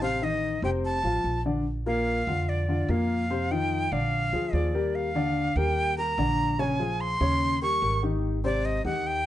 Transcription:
Already playing: A1
0.01 C3 C4 C5 F5
0.21 D#3 D#4 D#5
0.62 F1 C3 C4 C5 G5
0.85 A5
1.04 A1 F3 F4 F5
1.24 A#1
1.45 D3 D4 D5
1.86 A#2 A#3 A#4 F5
2.27 F2 D3 D4 F4
2.49 D5
2.68 D3 D4 F4
2.89 F2 A#2 A#3 A#4 F5
3.30 C3 C4 C5
3.51 D#3 D#4 F4 G5
3.92 A#1 D3 D4 D5 F5
4.33 D2 F3 F4 G#4
4.53 D#2 F3 F4 G#4 D5
4.74 G3 G4 A#4
4.95 F5
5.15 D3 D4 D5
5.56 D#2 G3 G4 A#4 G5
5.98 G3 G4 A#4 A#5
6.18 A#1 D3 D4 D5
6.59 C#3 C#4 C#5 G#5
6.79 F3 F4 G#4
7.01 C6
7.20 D#2 C#3 C#4 C#5
7.62 G3 G4 A#4 C#6
7.82 G#1 G3 G4 A#4
8.02 D#3 D#4 G4
8.44 C3 C4 C5 D5
8.65 D#5
8.85 D#2 D#3 D#4 G4 F#5
9.07 G5

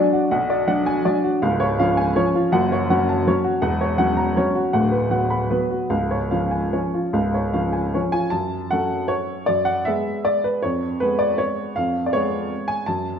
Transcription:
Already playing: F#3 D4 D5
0.13 F#4
0.31 B1 B2 F#5
0.50 D5
0.67 F#3 D4 F#5
0.86 G#5
1.05 F#3 D4 D5
1.24 F#4
1.42 C#1 C#2 F5
1.60 C#5
1.79 F3 C#4 F5
1.97 G#5
2.16 F3 C#4 C#5
2.35 F4
2.52 F#1 F#2 F#5
2.72 C#5
2.90 F#3 C#4 F#5
3.09 A5
3.28 F#3 C#4 C#5
3.44 F#4
3.62 E1 E2 F#5
3.81 C#5
3.98 F#3 C#4 F#5
4.17 A#5
4.37 F#3 C#4 C#5
4.55 F#4
4.73 D1 D2 F#5
4.91 B4
5.10 F#3 B3 F#5
5.30 B5
5.50 F#3 B3 B4
5.71 F#4
5.90 C#1 C#2 F5
6.11 C#5
6.31 F3 C#4 F5
6.51 G#5
6.73 F3 C#4 C#5
6.94 F4
7.13 C#1 C#2 F5
7.34 C#5
7.53 F3 C#4 F5
7.73 G#5
7.94 F3 C#4 C#5
8.12 F4 G#5
8.30 F#2 A5
8.71 F#3 C#4 A4 F#5
9.08 C#5
9.46 F#2 D5
9.65 F#5
9.85 G#3 B3 G#4 E5
10.25 D5
10.44 B4
10.62 F2 C#5
11.00 G#3 B3 G#4 B4
11.19 D5
11.38 C#5
11.76 F2 F5
12.06 D5
12.13 G#3 B3 G#4 C#5
12.68 G#5
12.86 F#2 A5

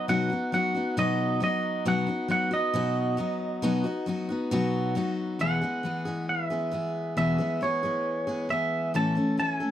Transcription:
0.08 B2 F#3 B3 D#4 F#4 F#5
0.30 B3 D#4 F#4
0.52 F#3 B3 D#4 F#4 F#5
0.75 B3 D#4 F#4
0.97 B2 F#3 B3 D#4 F#4 D#5
1.40 F#3 B3 D#4 F#4 D#5
1.85 B2 F#3 B3 D#4 F#4 F#5
2.07 B3 D#4 F#4
2.28 F#3 B3 D#4 F#4 F#5
2.51 B3 D#4 F#4 D#5
2.74 B2 F#3 B3 D#4 F#4
3.17 F#3 B3 D#4 F#4
3.62 B2 F#3 B3 D#4 F#4
3.84 B3 D#4 F#4
4.06 F#3 B3 D#4 F#4
4.29 B3 D#4 F#4
4.51 B2 F#3 B3 D#4 F#4
4.95 F#3 B3 D#4 F#4
5.39 E2 B2 E3 G#3 B3 G#4 F#5
5.62 E3 G#3 B3 G#4
5.83 E3 G#3 B3 G#4
6.05 E3 G#3 B3 G#4
6.29 E5
6.50 E3 G#3 B3 G#4
6.71 E3 G#3 B3 G#4
7.17 E2 B2 E3 G#3 B3 G#4 E5
7.38 E3 G#3 B3 G#4
7.61 E3 G#3 B3 G#4 C#5
7.83 E3 G#3 B3 G#4
8.27 E3 G#3 B3 G#4
8.49 E3 G#3 B3 G#4 E5
8.94 A2 E3 A3 C#4 A4 A5
9.15 A3 C#4 A4
9.37 E3 A3 C#4 A4 A5
9.51 G#5
9.60 A3 C#4 A4

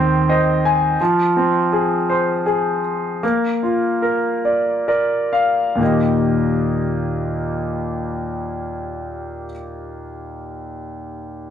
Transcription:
Already playing: D#2 D#3 C4 C5
0.29 C5 D#5
0.65 G#5
1.01 F3
1.37 C4
1.73 G#4
2.09 C5
2.46 G#4
3.23 A#3
3.63 F4
4.02 A#4
4.45 D5
4.88 A#4 D5
5.33 F5
5.75 D#2 A#2 D#3
5.80 A#3 G4 D#5

